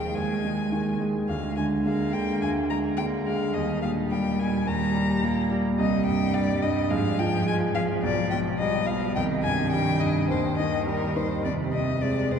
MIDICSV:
0, 0, Header, 1, 4, 480
1, 0, Start_track
1, 0, Key_signature, -3, "major"
1, 0, Tempo, 563380
1, 1097, Time_signature, 4, 2, 24, 8
1, 4935, Key_signature, -3, "minor"
1, 7807, Tempo, 572519
1, 10513, End_track
2, 0, Start_track
2, 0, Title_t, "Violin"
2, 0, Program_c, 0, 40
2, 0, Note_on_c, 0, 79, 62
2, 129, Note_on_c, 0, 80, 63
2, 142, Note_off_c, 0, 79, 0
2, 854, Note_off_c, 0, 80, 0
2, 1092, Note_on_c, 0, 77, 59
2, 1319, Note_off_c, 0, 77, 0
2, 1336, Note_on_c, 0, 80, 61
2, 1404, Note_off_c, 0, 80, 0
2, 1577, Note_on_c, 0, 77, 58
2, 1818, Note_on_c, 0, 79, 64
2, 1831, Note_off_c, 0, 77, 0
2, 2054, Note_off_c, 0, 79, 0
2, 2059, Note_on_c, 0, 80, 64
2, 2127, Note_off_c, 0, 80, 0
2, 2302, Note_on_c, 0, 82, 66
2, 2370, Note_off_c, 0, 82, 0
2, 2530, Note_on_c, 0, 79, 73
2, 2598, Note_off_c, 0, 79, 0
2, 2779, Note_on_c, 0, 77, 54
2, 3015, Note_on_c, 0, 75, 62
2, 3027, Note_off_c, 0, 77, 0
2, 3249, Note_off_c, 0, 75, 0
2, 3255, Note_on_c, 0, 77, 62
2, 3323, Note_off_c, 0, 77, 0
2, 3495, Note_on_c, 0, 79, 67
2, 3740, Note_on_c, 0, 80, 68
2, 3753, Note_off_c, 0, 79, 0
2, 3984, Note_on_c, 0, 82, 74
2, 3997, Note_off_c, 0, 80, 0
2, 4698, Note_off_c, 0, 82, 0
2, 4936, Note_on_c, 0, 75, 70
2, 5157, Note_off_c, 0, 75, 0
2, 5163, Note_on_c, 0, 79, 73
2, 5400, Note_on_c, 0, 74, 81
2, 5413, Note_off_c, 0, 79, 0
2, 5643, Note_on_c, 0, 75, 68
2, 5655, Note_off_c, 0, 74, 0
2, 5880, Note_on_c, 0, 77, 78
2, 5893, Note_off_c, 0, 75, 0
2, 6127, Note_on_c, 0, 79, 82
2, 6140, Note_off_c, 0, 77, 0
2, 6363, Note_off_c, 0, 79, 0
2, 6368, Note_on_c, 0, 80, 79
2, 6436, Note_off_c, 0, 80, 0
2, 6601, Note_on_c, 0, 77, 78
2, 6669, Note_off_c, 0, 77, 0
2, 6842, Note_on_c, 0, 74, 69
2, 7071, Note_off_c, 0, 74, 0
2, 7076, Note_on_c, 0, 79, 77
2, 7144, Note_off_c, 0, 79, 0
2, 7318, Note_on_c, 0, 75, 81
2, 7553, Note_on_c, 0, 77, 68
2, 7565, Note_off_c, 0, 75, 0
2, 7795, Note_off_c, 0, 77, 0
2, 7800, Note_on_c, 0, 79, 78
2, 7867, Note_off_c, 0, 79, 0
2, 8033, Note_on_c, 0, 80, 76
2, 8265, Note_off_c, 0, 80, 0
2, 8271, Note_on_c, 0, 79, 81
2, 8511, Note_on_c, 0, 75, 76
2, 8524, Note_off_c, 0, 79, 0
2, 8756, Note_off_c, 0, 75, 0
2, 8760, Note_on_c, 0, 72, 65
2, 8987, Note_off_c, 0, 72, 0
2, 8992, Note_on_c, 0, 75, 70
2, 9229, Note_off_c, 0, 75, 0
2, 9234, Note_on_c, 0, 70, 68
2, 9481, Note_on_c, 0, 72, 59
2, 9494, Note_off_c, 0, 70, 0
2, 9712, Note_off_c, 0, 72, 0
2, 9717, Note_on_c, 0, 74, 62
2, 9784, Note_off_c, 0, 74, 0
2, 9958, Note_on_c, 0, 75, 67
2, 10198, Note_on_c, 0, 74, 62
2, 10211, Note_off_c, 0, 75, 0
2, 10450, Note_on_c, 0, 72, 60
2, 10462, Note_off_c, 0, 74, 0
2, 10513, Note_off_c, 0, 72, 0
2, 10513, End_track
3, 0, Start_track
3, 0, Title_t, "Cello"
3, 0, Program_c, 1, 42
3, 129, Note_on_c, 1, 56, 56
3, 840, Note_off_c, 1, 56, 0
3, 1095, Note_on_c, 1, 56, 42
3, 1583, Note_on_c, 1, 58, 48
3, 1596, Note_off_c, 1, 56, 0
3, 2536, Note_off_c, 1, 58, 0
3, 2541, Note_on_c, 1, 58, 49
3, 3010, Note_off_c, 1, 58, 0
3, 3018, Note_on_c, 1, 55, 50
3, 3960, Note_off_c, 1, 55, 0
3, 3986, Note_on_c, 1, 55, 56
3, 4460, Note_on_c, 1, 58, 51
3, 4473, Note_off_c, 1, 55, 0
3, 4926, Note_off_c, 1, 58, 0
3, 4931, Note_on_c, 1, 55, 57
3, 5881, Note_on_c, 1, 53, 64
3, 5894, Note_off_c, 1, 55, 0
3, 7811, Note_on_c, 1, 51, 58
3, 7824, Note_off_c, 1, 53, 0
3, 8751, Note_off_c, 1, 51, 0
3, 8756, Note_on_c, 1, 51, 59
3, 9722, Note_on_c, 1, 48, 52
3, 9734, Note_off_c, 1, 51, 0
3, 10187, Note_off_c, 1, 48, 0
3, 10192, Note_on_c, 1, 48, 45
3, 10513, Note_off_c, 1, 48, 0
3, 10513, End_track
4, 0, Start_track
4, 0, Title_t, "Grand piano"
4, 0, Program_c, 2, 0
4, 0, Control_c, 2, 64, 127
4, 0, Note_on_c, 2, 39, 39
4, 0, Note_on_c, 2, 51, 35
4, 0, Note_on_c, 2, 56, 35
4, 95, Note_off_c, 2, 39, 0
4, 130, Note_on_c, 2, 39, 40
4, 274, Note_off_c, 2, 51, 0
4, 375, Note_off_c, 2, 56, 0
4, 375, Note_on_c, 2, 56, 34
4, 613, Note_on_c, 2, 51, 38
4, 760, Note_off_c, 2, 56, 0
4, 852, Note_on_c, 2, 56, 34
4, 999, Note_off_c, 2, 51, 0
4, 1068, Note_off_c, 2, 39, 0
4, 1095, Note_off_c, 2, 56, 0
4, 1096, Note_on_c, 2, 38, 43
4, 1113, Control_c, 2, 64, 0
4, 1271, Control_c, 2, 64, 127
4, 1338, Note_on_c, 2, 50, 34
4, 1583, Note_on_c, 2, 56, 37
4, 1724, Note_off_c, 2, 50, 0
4, 1818, Note_on_c, 2, 50, 36
4, 1967, Note_off_c, 2, 56, 0
4, 2032, Note_off_c, 2, 38, 0
4, 2058, Note_on_c, 2, 38, 43
4, 2204, Note_off_c, 2, 50, 0
4, 2306, Note_on_c, 2, 56, 37
4, 2548, Note_on_c, 2, 50, 41
4, 2687, Note_off_c, 2, 56, 0
4, 2787, Note_on_c, 2, 56, 37
4, 2927, Note_off_c, 2, 50, 0
4, 2989, Note_off_c, 2, 38, 0
4, 3020, Note_on_c, 2, 39, 49
4, 3023, Note_off_c, 2, 56, 0
4, 3034, Control_c, 2, 64, 0
4, 3191, Control_c, 2, 64, 127
4, 3266, Note_on_c, 2, 46, 36
4, 3500, Note_on_c, 2, 55, 44
4, 3648, Note_off_c, 2, 46, 0
4, 3743, Note_on_c, 2, 46, 43
4, 3884, Note_off_c, 2, 55, 0
4, 3952, Note_off_c, 2, 39, 0
4, 3979, Note_on_c, 2, 39, 50
4, 4124, Note_off_c, 2, 46, 0
4, 4214, Note_on_c, 2, 55, 42
4, 4454, Note_on_c, 2, 46, 42
4, 4598, Note_off_c, 2, 55, 0
4, 4693, Note_on_c, 2, 55, 44
4, 4837, Note_off_c, 2, 46, 0
4, 4905, Note_off_c, 2, 39, 0
4, 4931, Note_on_c, 2, 36, 54
4, 4933, Note_off_c, 2, 55, 0
4, 4952, Control_c, 2, 64, 0
4, 5064, Control_c, 2, 64, 127
4, 5172, Note_on_c, 2, 43, 39
4, 5408, Note_on_c, 2, 55, 46
4, 5554, Note_off_c, 2, 43, 0
4, 5650, Note_on_c, 2, 43, 45
4, 5793, Note_off_c, 2, 55, 0
4, 5861, Note_off_c, 2, 36, 0
4, 5885, Note_on_c, 2, 44, 60
4, 5891, Note_off_c, 2, 43, 0
4, 5908, Control_c, 2, 64, 0
4, 6057, Control_c, 2, 64, 127
4, 6127, Note_on_c, 2, 53, 47
4, 6362, Note_on_c, 2, 56, 45
4, 6514, Note_off_c, 2, 53, 0
4, 6600, Note_on_c, 2, 53, 46
4, 6750, Note_off_c, 2, 56, 0
4, 6819, Note_off_c, 2, 44, 0
4, 6840, Note_on_c, 2, 35, 56
4, 6845, Note_off_c, 2, 53, 0
4, 6867, Control_c, 2, 64, 0
4, 7023, Control_c, 2, 64, 127
4, 7087, Note_on_c, 2, 47, 43
4, 7332, Note_on_c, 2, 55, 48
4, 7472, Note_off_c, 2, 47, 0
4, 7571, Note_on_c, 2, 47, 46
4, 7714, Note_off_c, 2, 55, 0
4, 7775, Note_off_c, 2, 35, 0
4, 7810, Note_off_c, 2, 47, 0
4, 7810, Note_on_c, 2, 36, 59
4, 7826, Control_c, 2, 64, 0
4, 7958, Control_c, 2, 64, 127
4, 8042, Note_on_c, 2, 43, 44
4, 8284, Note_on_c, 2, 55, 46
4, 8425, Note_off_c, 2, 43, 0
4, 8530, Note_on_c, 2, 43, 44
4, 8666, Note_off_c, 2, 55, 0
4, 8733, Note_off_c, 2, 36, 0
4, 8765, Note_off_c, 2, 43, 0
4, 8766, Note_on_c, 2, 39, 55
4, 8778, Control_c, 2, 64, 0
4, 8894, Control_c, 2, 64, 127
4, 9007, Note_on_c, 2, 51, 40
4, 9239, Note_on_c, 2, 55, 46
4, 9387, Note_off_c, 2, 51, 0
4, 9482, Note_on_c, 2, 51, 43
4, 9621, Note_off_c, 2, 55, 0
4, 9691, Note_off_c, 2, 39, 0
4, 9719, Note_off_c, 2, 51, 0
4, 9722, Note_on_c, 2, 41, 54
4, 9733, Control_c, 2, 64, 0
4, 9877, Control_c, 2, 64, 127
4, 9962, Note_on_c, 2, 48, 37
4, 10205, Note_on_c, 2, 56, 39
4, 10351, Note_off_c, 2, 48, 0
4, 10449, Note_on_c, 2, 48, 35
4, 10513, Note_off_c, 2, 41, 0
4, 10513, Note_off_c, 2, 48, 0
4, 10513, Note_off_c, 2, 56, 0
4, 10513, End_track
0, 0, End_of_file